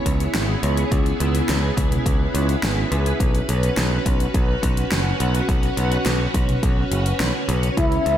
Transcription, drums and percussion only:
0.06 kick, closed hi-hat
0.20 closed hi-hat
0.35 snare, closed hi-hat
0.63 closed hi-hat
0.77 closed hi-hat
0.92 kick, closed hi-hat
1.06 closed hi-hat
1.20 closed hi-hat
1.35 closed hi-hat
1.49 snare, closed hi-hat
1.77 kick, closed hi-hat
1.92 closed hi-hat, mid tom
2.06 kick, closed hi-hat
2.35 closed hi-hat
2.49 closed hi-hat
2.63 snare, closed hi-hat
2.92 closed hi-hat
3.06 closed hi-hat
3.20 kick, closed hi-hat
3.35 closed hi-hat
3.49 closed hi-hat
3.63 closed hi-hat
3.77 snare, closed hi-hat
4.06 kick, closed hi-hat
4.20 closed hi-hat
4.34 kick, closed hi-hat
4.63 kick, closed hi-hat
4.77 closed hi-hat
4.92 snare, closed hi-hat
5.20 closed hi-hat
5.35 closed hi-hat
5.49 kick, closed hi-hat
5.63 closed hi-hat
5.77 closed hi-hat
5.92 closed hi-hat
6.06 snare, closed hi-hat
6.34 kick, closed hi-hat
6.49 closed hi-hat, mid tom
6.63 kick, closed hi-hat
6.92 closed hi-hat
7.06 closed hi-hat
7.20 snare, closed hi-hat
7.49 closed hi-hat
7.63 closed hi-hat
7.77 kick, closed hi-hat
7.92 closed hi-hat
8.06 closed hi-hat

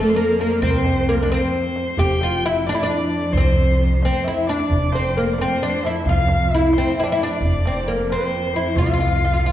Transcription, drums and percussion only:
0.17 tombak ka
0.40 tombak tek
0.63 tombak dum
0.85 tombak tek
1.30 tombak tek
1.53 tombak ka
1.76 tombak tek
1.98 tombak dum
2.21 tombak tek
2.66 tombak tek
2.89 tombak ka
3.34 tombak dum
4.02 tombak tek
4.26 tombak tek
4.37 tombak ka
4.49 tombak tek
4.59 tombak ka
4.71 tombak dum
4.93 tombak tek
5.38 tombak tek
5.61 tombak ka
5.83 tombak tek
6.06 tombak dum
6.28 tombak tek
6.73 tombak tek
6.96 tombak ka
7.19 tombak tek
7.42 tombak dum
7.65 tombak tek
8.10 tombak tek
8.32 tombak ka
8.54 tombak tek
8.77 tombak dum
8.99 tombak tek
9.23 tombak ka
9.45 tombak tek

